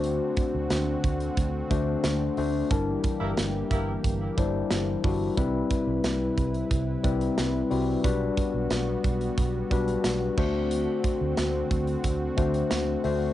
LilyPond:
<<
  \new Staff \with { instrumentName = "Horn section" } { \time 4/4 \key d \mixolydian \tempo 4 = 90 r1 | r8. <bes e' g' bes'>16 r8 <bes e' g' bes'>8 r2 | r1 | r1 |
r1 | }
  \new Staff \with { instrumentName = "Tine electric piano" } { \time 4/4 \key d \mixolydian <a d' fis' c''>4~ <a d' fis' c''>16 r4 r16 <a d' fis' c''>4 <a d' fis' c''>8 | <g d' e' bes'>4.~ <g d' e' bes'>16 r8. <g d' e' c''>4 <g d' e' fis'>8 | <g c' e' b'>4.~ <g c' e' b'>16 r8. <g c' e' b'>4 <g c' e' fis'>8 | <g d' fis' b'>4.~ <g d' fis' b'>16 r8. <g d' fis' b'>4 <a d' fis' c''>8~ |
<a d' fis' c''>4~ <a d' fis' c''>16 r4 r16 <a d' fis' c''>4 <a d' fis' c''>8 | }
  \new Staff \with { instrumentName = "Analog synth pad" } { \time 4/4 \key d \mixolydian <d c' fis'>1 | <e bes g'>1 | <c e' b'>1 | <g b fis'>2.~ <g b fis'>8 <d c' fis'>8~ |
<d c' fis'>1 | }
  \new Staff \with { instrumentName = "Fingered electric bass" } { \clef bass \time 4/4 \key d \mixolydian d,8 r16 d,16 d,8 d,8 d,8 d,8 d,8 d,8 | g,,8 r16 g,,16 g,,8 g,,8 g,,8 g,,8 g,,8 g,,8 | c,8 r16 c,16 c,8 c,8 c,8 c,8 c,8 c,8 | b,,8 r16 b,,16 b,,8 b,,8 b,,8 b,,8 b,,8 d,8~ |
d,8 r16 d,16 d,8 d,8 d,8 d,8 d,8 d,8 | }
  \new DrumStaff \with { instrumentName = "Drums" } \drummode { \time 4/4 hh8 <hh bd>8 <hh sn tamb>8 <hh bd>16 hh16 <hh bd>8 <hh bd>8 <hh sn tamb>8 hho8 | <hh bd>8 <hh bd>8 <hh sn tamb>8 <hh bd>8 <hh bd>8 <hh bd>8 <hh sn tamb>8 <hho bd>8 | <hh bd>8 <hh bd>8 <hh sn tamb>8 <hh bd>16 hh16 <hh bd>8 <hh bd>16 hh16 <hh sn tamb>8 hho8 | <hh bd>8 <hh bd>8 <hh sn tamb>8 <hh bd>16 hh16 <hh bd>8 <hh bd>16 hh16 <hh sn tamb>8 <cymc bd>8 |
hh8 <hh bd>8 <hh sn tamb>8 <hh bd>16 hh16 <hh bd>8 <hh bd>16 hh16 <hh sn tamb>8 hho8 | }
>>